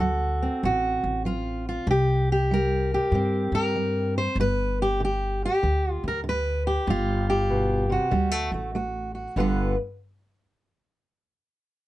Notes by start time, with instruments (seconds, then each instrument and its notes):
Already playing: upright bass D2, steel-string acoustic guitar A4
0.00 steel-string acoustic guitar F#3 F#4
0.42 steel-string acoustic guitar C4
0.63 upright bass A1, steel-string acoustic guitar A2 F#4
1.03 upright bass A1
1.25 steel-string acoustic guitar F#3 F4
1.69 steel-string acoustic guitar F4
1.87 upright bass C2, steel-string acoustic guitar C3 G4
2.32 steel-string acoustic guitar G4
2.51 steel-string acoustic guitar G3 A#4
2.94 steel-string acoustic guitar G4
3.12 upright bass G2, steel-string acoustic guitar C3 C4
3.52 upright bass G2, steel-string acoustic guitar A#4
3.76 steel-string acoustic guitar G3
4.18 steel-string acoustic guitar C5
4.35 upright bass G1
4.40 steel-string acoustic guitar G2 B4
4.82 steel-string acoustic guitar G4
5.00 steel-string acoustic guitar D3
5.05 steel-string acoustic guitar G4
5.45 steel-string acoustic guitar G4
5.63 upright bass D2, steel-string acoustic guitar D3
5.91 steel-string acoustic guitar F4
6.04 upright bass D2
6.08 steel-string acoustic guitar A#4
6.24 steel-string acoustic guitar D3
6.29 steel-string acoustic guitar B4
6.67 steel-string acoustic guitar G4
6.87 upright bass G1, steel-string acoustic guitar G2 F4
7.30 steel-string acoustic guitar G4
7.50 steel-string acoustic guitar B2
7.90 steel-string acoustic guitar C3 F#4
8.11 upright bass D2, steel-string acoustic guitar D3 G3
8.31 steel-string acoustic guitar A3
8.52 upright bass A1, steel-string acoustic guitar A3
8.75 steel-string acoustic guitar A3 F#4
9.15 steel-string acoustic guitar F#4
9.36 upright bass G1, steel-string acoustic guitar G2 D3 B3 F4 B4